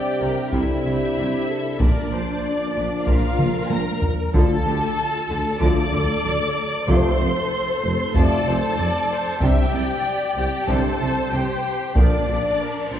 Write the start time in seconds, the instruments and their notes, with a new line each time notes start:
Already playing: trombone section C3 G3, french horn section C4 D4, violin section G4 G5, viola section D5
0.21 tuba C2, double bass section C2, cello section C3, viola section A#4
0.52 tuba C2, double bass section C2, cello section C3, violin section E4 E5, viola section A4, taiko
0.84 double bass section C2, tuba C2, cello section C3, viola section G4
1.16 double bass section C2, tuba C2, cello section C3, viola section G4
1.49 viola section A4
1.80 tuba A#1, double bass section A#1, cello section A#2, trombone section D3 F3, french horn section A#3, violin section D4 D5, viola section A#4, taiko
2.11 double bass section A#1, tuba A#1, cello section A#2, viola section C5
2.44 viola section D5
2.75 double bass section A#1, tuba A#1, cello section A#2
3.07 tuba A#1, double bass section A#1, cello section A#2, violin section F4 F5, viola section A#4, taiko
3.38 tuba A#1, double bass section A#1, cello section A#2, taiko mid
3.70 double bass section A#1, tuba A#1, cello section A#2, violin section A#4 A#5, taiko high
4.02 taiko low
4.33 tuba D2, double bass section D2, trombone section D3 F3, cello section D3, timpani D3, french horn section A3 F4, violin section A4 A5, viola section A4, taiko
4.65 double bass section D2, tuba D2, cello section D3, viola section G4
5.00 viola section F4
5.29 double bass section D2, tuba D2, cello section D3, viola section A4
5.60 double bass section D2, tuba D2, cello section D3, trombone section D3 F3, french horn section A3 F4, violin section D5 D6, taiko
5.92 double bass section D2, tuba D2, cello section D3
6.24 double bass section D2, tuba D2, cello section D3
6.87 tuba F1, double bass section F1, cello section F2, trombone section C3 F3, french horn section A3 F4, viola section A4, violin section C5 C6, taiko
7.19 double bass section F1, tuba F1, cello section F2
7.83 tuba F1, double bass section F1, cello section F2
8.14 tuba F1, double bass section F1, cello section F2, trombone section C3 F3, french horn section A3 F4, violin section A4 A5, viola section D5, taiko
8.46 double bass section F1, tuba F1, cello section F2, viola section C5
8.77 double bass section F1, tuba F1, cello section F2, viola section D5
9.11 viola section C5
9.41 double bass section C2, tuba C2, trombone section C3 G3, cello section C3, french horn section C4 D4, violin section G4 G5, viola section E5, taiko
9.73 double bass section C2, tuba C2, cello section C3, viola section D5
10.36 double bass section C2, tuba C2, cello section C3, violin section G4 G5
10.68 double bass section C2, tuba C2, cello section C3, trombone section C3 G3, french horn section C4 D4, violin section A4 A5, viola section C5, taiko
11.00 tuba C2, double bass section C2, cello section C3
11.32 double bass section C2, tuba C2, cello section C3, violin section G4 G5
11.95 tuba A#1, double bass section A#1, cello section A#2, trombone section D3 F3, french horn section A#3 D4, violin section D4 D5, viola section D5, taiko, reverse cymbal
12.27 tuba A#1, double bass section A#1, cello section A#2
12.60 viola section A#4
12.91 double bass section A#1, tuba A#1, cello section A#2, violin section D4 D5, viola section C5